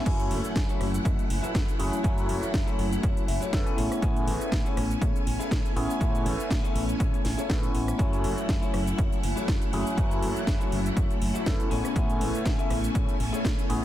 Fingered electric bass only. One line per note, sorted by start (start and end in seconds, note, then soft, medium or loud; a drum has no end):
0.06 0.32 F#2 loud
0.31 0.40 F#1 loud
0.56 0.65 F#2 medium
0.81 0.98 F#1 loud
1.05 1.14 F#2 medium
1.30 1.39 F#1 medium
1.55 1.64 F#2 medium
1.80 1.88 F#1 medium
2.04 2.31 F#2 loud
2.29 2.38 F#1 loud
2.43 muted fingered electric bass stroke soft
2.54 2.63 F#2 medium
2.79 2.96 F#1 loud
3.03 3.12 F#2 medium
3.28 3.37 F#1 medium
3.53 3.62 F#2 medium
3.78 3.87 A1 medium
4.02 4.29 A2 loud
4.27 4.36 A1 loud
4.52 4.61 A2 medium
4.77 4.94 A1 loud
5.01 5.11 A2 medium
5.27 5.36 A1 medium
5.40 muted fingered electric bass stroke soft
5.51 5.60 A2 medium
5.76 5.85 A1 medium
6.01 6.27 A2 loud
6.26 6.35 A1 loud
6.39 muted fingered electric bass stroke soft
6.50 6.59 A2 medium
6.75 6.92 A1 loud
7.00 7.09 A2 medium
7.25 7.34 A1 medium
7.38 muted fingered electric bass stroke soft
7.49 7.67 A2 loud
7.74 7.92 A1 medium
7.99 8.25 F#2 loud
8.24 8.33 F#1 loud
8.49 8.58 F#2 medium
8.74 8.91 F#1 loud
8.98 9.07 F#2 medium
9.24 9.33 F#1 medium
9.37 muted fingered electric bass stroke soft
9.48 9.57 F#2 medium
9.73 9.82 F#1 medium
9.98 10.24 F#2 loud
10.23 10.32 F#1 loud
10.36 muted fingered electric bass stroke soft
10.47 10.56 F#2 medium
10.72 10.89 F#1 loud
10.97 11.06 F#2 medium
11.22 11.31 F#1 medium
11.46 11.55 F#2 medium
11.71 11.80 A1 medium
11.96 12.22 A2 loud
12.20 12.30 A1 loud
12.45 12.54 A2 medium
12.70 12.88 A1 loud
12.95 13.04 A2 medium
13.20 13.29 A1 medium
13.33 muted fingered electric bass stroke soft
13.45 13.54 A2 medium
13.69 13.78 A1 medium